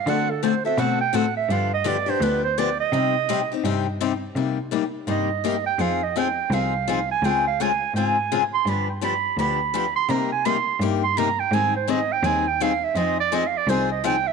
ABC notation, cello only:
X:1
M:4/4
L:1/8
Q:"Swing" 1/4=167
K:Cm
V:1 name="Cello" clef=bass
D,4 =B,,2 =A,,2 | G,,4 D,,4 | C,4 G,,4 | C,4 G,,4 |
F,,4 C,,4 | _D,,4 A,,4 | G,,4 D,,4 | C,4 G,,4 |
A,,4 E,,4 | F,,4 C,,4 |]